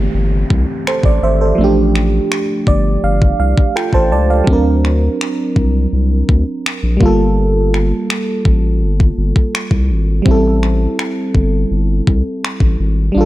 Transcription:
Already playing: E3 A3 C4 G4, downlifter
0.14 G1
0.50 C2, kick
0.87 A4 C5, finger snap
1.03 A1 D5, kick
1.22 G#1 C5 E5
1.41 A4 C5
1.55 A1 F3 A3
1.61 D4 G4
1.95 finger snap
2.32 finger snap
2.67 G1 D5, kick
3.03 G1 F5
3.22 kick
3.39 C2 F5
3.58 kick
3.76 F4 A4 G5, finger snap
3.93 A1 A4 C5 A5, kick
4.12 C#2 D5 A5
4.30 D5 F5
4.44 D2 F#3 C4, kick
4.50 D4 A#4
4.85 finger snap
5.21 finger snap
5.56 C2, kick
5.93 C2
6.29 D2, kick
6.66 finger snap
6.83 A#1
6.97 G1 G3 A#3, kick
7.03 F4 A4
7.74 finger snap
8.10 finger snap
8.45 A1, kick
8.82 G1
9.00 kick
9.18 G1
9.36 kick
9.55 finger snap
9.71 C2, kick
9.90 G#1
10.22 A1 G3 C4, kick
10.28 E4 A4
10.63 finger snap
10.99 finger snap
11.35 G1, kick
11.71 G1
12.07 C2, kick
12.45 finger snap
12.60 A1, kick
12.80 G#1
13.12 A1 G3 D4
13.18 F4 A4

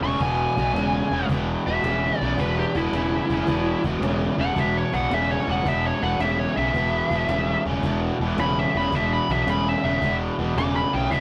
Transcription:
0.01 E1 E2 C#3 C#6, cajon slap
0.20 E1 E2 B2 G#5, cajon bass
0.57 B1 E2 B2, cajon bass
0.73 E1 E2 C#3, cajon slap
1.11 E1 E2 C#3, cajon slap
1.29 E1 E2 B2, cajon bass
1.66 E1 E2 B2 E5, cajon slap
1.84 E1 E2 C#3, cajon slap
2.17 B1 E2 C#3 D5, cajon slap
2.37 E1 E2 B2 B4, cajon bass
2.59 G4
2.75 E1 E2 B2 E4, cajon bass
2.92 E1 E2 C#3, cajon slap
3.29 E1 E2 C#3, cajon bass
3.47 E1 E2 B2, cajon bass
3.84 E1 E2 B2, cajon bass
4.01 E1 E2 C#3, cajon slap
4.38 E1 E2 C#3 F#5, cajon slap
4.55 E1 E2 B2, cajon bass
4.60 E5
4.77 C#5
4.92 B1 E2 B2 F#5, cajon bass
5.10 E1 E2 C#3 E5, cajon slap
5.31 C#5
5.46 E1 E2 C#3, cajon slap
5.51 F#5
5.64 E1 E2 B2, cajon bass
5.68 E5
5.86 C#5
6.01 E1 E2 B2 F#5, cajon slap
6.19 E1 E2 C#3 E5, cajon slap
6.39 C#5
6.56 B1 E2 C#3 E5, cajon slap
6.74 E1 E2 B2, cajon bass
7.10 E1 E2 B2, cajon bass
7.28 E1 E2 C#3, cajon slap
7.65 E1 E2 C#3, cajon slap
7.83 E1 E2 B2, cajon bass
8.20 E1 E2 B2, cajon slap
8.38 E1 E2 C#3 B5, cajon slap
8.59 E5
8.74 E1 E2 C#3 B5, cajon slap
8.92 E1 E2 B2 E5, cajon bass
9.13 B5
9.29 B1 E2 B2 E5, cajon bass
9.46 E1 E2 C#3 B5, cajon slap
9.69 E5
9.83 E1 E2 C#3 E5, cajon slap
10.01 E1 E2 B2, cajon bass
10.38 E1 E2 B2, cajon slap
10.56 E1 E2 C#3 D6, cajon slap
10.76 B5
10.93 B1 E2 C#3 G5, cajon slap
11.11 E1 E2 B2 E5, cajon bass

